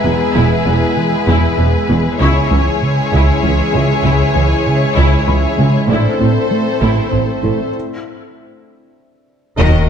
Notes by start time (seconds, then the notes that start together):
Already playing: E3 G#3 B3 E4 G#4 B4 E5 A#5
0.04 E1 E2 E3 G#3 B3
0.35 E1 E2 E3 E4
0.66 E1 E2 G#3 B3
0.97 E3
1.28 E1 E2 E3 E4
1.58 E1 E2 B3
1.89 E1 E2 E3 G#3 B3
2.19 C#2 C#3 E3 G#3 C#4 E4 G#4 C#5 E5 C#6
2.51 C#2 E3 C#4
2.82 C#3
3.12 C#2 C#3 E4
3.43 C#2 E3 C#4
3.73 C#2 C#3 G#3
4.04 C#2 C#3 E4
4.34 C#2 E3 C#4
4.67 C#3
4.96 C#2 C#3 E4
5.27 C#2 E3 C#4 B5
5.58 C#2 C#3 G#3
5.88 A1 A2 E3 A3 C4 D4 E4 A4 C5 D5
6.20 A1 A2 C4
6.51 A3
6.81 A1 A2 A3 E4 C5
7.12 A1 A2 C4
7.43 A1 A2 A3 E4
9.58 D#1 D#2 D#3 F#3 A#3 D#4 F#4 A#4 D#5, sub drop